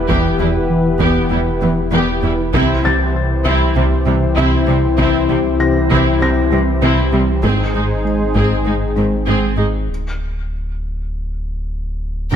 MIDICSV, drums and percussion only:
0, 0, Header, 1, 2, 480
1, 0, Start_track
1, 0, Tempo, 612245
1, 71, Time_signature, 4, 2, 24, 8
1, 9689, End_track
2, 0, Start_track
2, 0, Title_t, "Taiko and cinematic ensemble drums"
2, 70, Note_on_c, 9, 41, 76
2, 148, Note_off_c, 9, 41, 0
2, 789, Note_on_c, 9, 41, 66
2, 868, Note_off_c, 9, 41, 0
2, 1990, Note_on_c, 9, 41, 83
2, 2068, Note_off_c, 9, 41, 0
2, 2711, Note_on_c, 9, 41, 69
2, 2789, Note_off_c, 9, 41, 0
2, 3910, Note_on_c, 9, 41, 76
2, 3988, Note_off_c, 9, 41, 0
2, 4633, Note_on_c, 9, 41, 61
2, 4712, Note_off_c, 9, 41, 0
2, 5831, Note_on_c, 9, 41, 89
2, 5909, Note_off_c, 9, 41, 0
2, 6552, Note_on_c, 9, 41, 62
2, 6631, Note_off_c, 9, 41, 0
2, 9689, End_track
0, 0, End_of_file